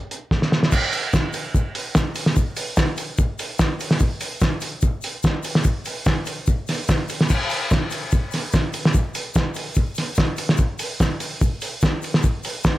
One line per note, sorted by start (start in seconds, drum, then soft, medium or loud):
0.11 closed hi-hat medium
0.31 kick loud
0.31 snare medium
0.42 snare medium
0.52 snare medium
0.63 snare medium
0.72 kick loud
0.72 crash loud
0.72 shaker loud
0.92 open hi-hat medium
0.92 shaker medium
1.13 kick loud
1.13 snare loud
1.13 shaker medium
1.33 open hi-hat medium
1.33 shaker medium
1.55 kick loud
1.55 shaker loud
1.75 open hi-hat medium
1.95 kick loud
1.95 snare loud
1.95 shaker loud
2.15 open hi-hat medium
2.15 shaker medium
2.26 snare medium
2.36 kick loud
2.36 shaker loud
2.56 open hi-hat loud
2.56 shaker medium
2.76 kick loud
2.76 snare loud
2.76 shaker loud
2.97 open hi-hat medium
2.97 shaker medium
3.18 kick loud
3.18 shaker loud
3.39 open hi-hat loud
3.39 shaker medium
3.59 kick loud
3.59 snare loud
3.59 shaker medium
3.80 open hi-hat medium
3.80 shaker medium
3.91 snare medium
3.99 kick loud
3.99 shaker loud
4.20 open hi-hat medium
4.20 shaker medium
4.40 kick loud
4.40 snare loud
4.40 shaker medium
4.61 open hi-hat medium
4.61 shaker medium
4.81 kick loud
4.81 shaker loud
5.02 open hi-hat medium
5.02 shaker medium
5.23 kick loud
5.23 snare loud
5.23 shaker loud
5.43 open hi-hat medium
5.43 shaker medium
5.55 snare medium
5.64 kick loud
5.64 shaker loud
5.85 open hi-hat medium
5.85 shaker medium
6.05 kick loud
6.05 snare loud
6.05 shaker loud
6.26 open hi-hat medium
6.26 shaker medium
6.46 kick loud
6.46 shaker loud
6.67 snare soft
6.67 open hi-hat medium
6.67 shaker medium
6.88 kick loud
6.88 snare loud
6.88 shaker loud
7.08 open hi-hat medium
7.08 shaker medium
7.21 snare medium
7.29 kick loud
7.29 crash loud
7.29 shaker loud
7.49 open hi-hat medium
7.49 shaker medium
7.70 kick loud
7.70 snare loud
7.70 shaker medium
7.90 open hi-hat medium
7.90 shaker medium
8.11 kick loud
8.11 shaker medium
8.31 snare soft
8.31 open hi-hat medium
8.31 shaker medium
8.52 kick loud
8.52 snare loud
8.52 shaker loud
8.73 open hi-hat medium
8.73 shaker medium
8.85 snare medium
8.94 kick loud
8.94 shaker loud
9.14 open hi-hat medium
9.14 shaker medium
9.34 kick loud
9.34 snare loud
9.34 shaker loud
9.54 open hi-hat medium
9.54 shaker medium
9.75 kick loud
9.75 shaker loud
9.95 snare soft
9.95 open hi-hat medium
9.95 shaker medium
10.15 kick loud
10.15 snare loud
10.15 shaker loud
10.37 open hi-hat medium
10.37 shaker medium
10.49 snare medium
10.57 kick loud
10.57 shaker loud
10.79 open hi-hat medium
10.79 shaker medium
11.00 kick loud
11.00 snare loud
11.00 shaker loud
11.20 open hi-hat medium
11.20 shaker medium
11.41 kick loud
11.41 shaker loud
11.61 open hi-hat medium
11.61 shaker medium
11.81 kick loud
11.81 snare loud
11.81 shaker loud
12.02 open hi-hat medium
12.02 shaker medium
12.14 snare medium
12.23 kick loud
12.23 shaker loud
12.43 open hi-hat medium
12.43 shaker medium
12.63 kick loud
12.63 snare loud
12.63 shaker medium